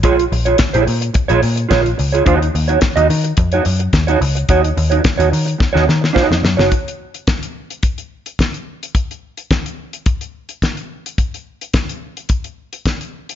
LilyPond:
<<
  \new Staff \with { instrumentName = "Clean electric guitar" } { \time 4/4 \key ees \dorian \tempo 4 = 108 <f' aes' des''>16 r8 <f' aes' des''>16 r16 <f' aes' des''>16 r8. <f' aes' des''>16 r8 <f' aes' des''>16 r8 <f' aes' des''>16 | <ees' ges' des''>16 r8 <ees' ges' des''>16 r16 <ees' ges' ees''>16 r8. <ees' ges' des''>16 r8. <ees' ges' des''>16 r8 | <ees' ges' des''>16 r8 <ees' ges' des''>16 r16 <ees' ges' des''>16 r8. <ees' ges' des''>16 r8 <ees' ges' des''>16 r8 <ees' ges' des''>16 | r1 |
r1 | r1 | }
  \new Staff \with { instrumentName = "Picked electric bass" } { \clef bass \time 4/4 \key ees \dorian bes,,8 bes,,8 r16 bes,,16 bes,8 r16 bes,,16 bes,8 bes,,8 des,8 | ees,8 ees,8 r16 ees,16 ees8 f,8 ges,8 ees,8 des,8 | ees,8 ees,8 r16 ees,16 ees8 r16 ees,16 ees8 r16 f,16 ges,16 ges,,16 | r1 |
r1 | r1 | }
  \new DrumStaff \with { instrumentName = "Drums" } \drummode { \time 4/4 <hh bd>16 hh16 hho16 hh16 <hh bd sn>16 hh16 hho16 hh16 <hh bd>16 hh16 hho16 hh16 <hh bd sn>16 hh16 hho16 hh16 | <hh bd>16 hh16 hho16 hh16 <hh bd sn>16 hh16 hho16 hh16 <hh bd>16 hh16 hho16 hh16 <hh bd sn>16 hh16 hho16 hh16 | <hh bd>16 hh16 hho16 hh16 <hh bd sn>16 hh16 hho16 hh16 <bd sn>16 sn16 sn16 sn16 <bd sn>16 sn16 sn16 sn16 | <hh bd>16 hh8 hh16 <hh bd sn>16 hh8 hh16 <hh bd>16 hh8 hh16 <hh bd sn>16 hh8 hh16 |
<hh bd>16 hh8 hh16 <hh bd sn>16 hh8 hh16 <hh bd>16 hh8 hh16 <hh bd sn>16 hh8 hh16 | <hh bd>16 hh8 hh16 <hh bd sn>16 hh8 hh16 <hh bd>16 hh8 hh16 <hh bd sn>16 hh8 hh16 | }
>>